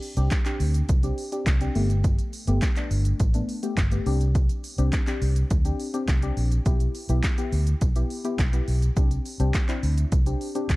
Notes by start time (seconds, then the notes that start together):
0.02 open hi-hat, shaker
0.17 C2 C4 D4 G4, closed hi-hat, shaker
0.31 kick, snare, clap, closed hi-hat, shaker
0.45 C4 D4 G4, clap, closed hi-hat, shaker
0.60 D2, open hi-hat, shaker
0.74 closed hi-hat, shaker
0.89 C2, kick, closed hi-hat, shaker
1.03 C4 D4 G4, closed hi-hat, shaker
1.18 open hi-hat, shaker
1.32 C4 D4 G4, closed hi-hat, shaker
1.46 C2, kick, snare, clap, closed hi-hat, shaker
1.61 C4 D4 G4, closed hi-hat, shaker
1.75 G1 A3 B3 G4, open hi-hat, shaker
1.90 closed hi-hat, shaker
2.04 kick, closed hi-hat, shaker
2.19 closed hi-hat, shaker
2.33 open hi-hat, shaker
2.47 G1 A3 B3 G4, closed hi-hat, shaker
2.62 kick, snare, clap, closed hi-hat, shaker
2.76 A3 B3 D4, clap, closed hi-hat, shaker
2.91 G1, open hi-hat, shaker
3.05 closed hi-hat, shaker
3.20 A1, kick, closed hi-hat, shaker
3.34 A3 B3 D4, closed hi-hat, shaker
3.49 open hi-hat, shaker
3.63 A3 B3 G4, closed hi-hat, shaker
3.77 G1, kick, snare, clap, closed hi-hat, shaker
3.92 A3 B3 G4, closed hi-hat, shaker
4.06 C2 C4 D4 G4, open hi-hat, shaker
4.21 closed hi-hat, shaker
4.35 kick, closed hi-hat, shaker
4.49 closed hi-hat, shaker
4.64 open hi-hat, shaker
4.78 C2 C4 D4 G4, closed hi-hat, shaker
4.93 kick, snare, clap, closed hi-hat, shaker
5.07 C4 D4 G4, clap, closed hi-hat, shaker
5.22 C2, open hi-hat, shaker
5.36 closed hi-hat, shaker
5.50 D2, kick, closed hi-hat, shaker
5.65 C4 D4 G4, closed hi-hat, shaker
5.80 open hi-hat, shaker
5.94 C4 D4 G4, closed hi-hat, shaker
6.08 C2, kick, snare, clap, closed hi-hat, shaker
6.22 C4 D4 G4, closed hi-hat, shaker
6.37 A#1, open hi-hat, shaker
6.52 closed hi-hat, shaker
6.66 B1 B3 E4 G4, kick, closed hi-hat, shaker
6.80 closed hi-hat, shaker
6.95 open hi-hat, shaker
7.09 B1 B3 E4 G4, closed hi-hat, shaker
7.23 kick, snare, clap, closed hi-hat, shaker
7.38 B3 E4 G4, closed hi-hat, shaker
7.52 D2, open hi-hat, shaker
7.67 closed hi-hat, shaker
7.81 B1, kick, closed hi-hat, shaker
7.95 B3 E4 G4, closed hi-hat, shaker
8.10 open hi-hat, shaker
8.24 B3 E4 G4, closed hi-hat, shaker
8.39 B1, kick, snare, clap, closed hi-hat, shaker
8.53 B3 E4 G4, closed hi-hat, shaker
8.68 B1, open hi-hat, shaker
8.82 closed hi-hat, shaker
8.96 C2 C4 D4 G4, kick, closed hi-hat, shaker
9.11 closed hi-hat, shaker
9.25 open hi-hat, shaker
9.40 C2 C4 D4 G4, closed hi-hat, shaker
9.54 kick, snare, clap, closed hi-hat, shaker
9.68 C4 D4 E4, clap, closed hi-hat, shaker
9.83 D2, open hi-hat, shaker
9.97 closed hi-hat, shaker
10.12 C2, kick, closed hi-hat, shaker
10.26 C4 D4 G4, closed hi-hat, shaker
10.41 open hi-hat, shaker
10.55 C4 D4 G4, closed hi-hat, shaker
10.70 C2, kick, snare, clap, closed hi-hat, shaker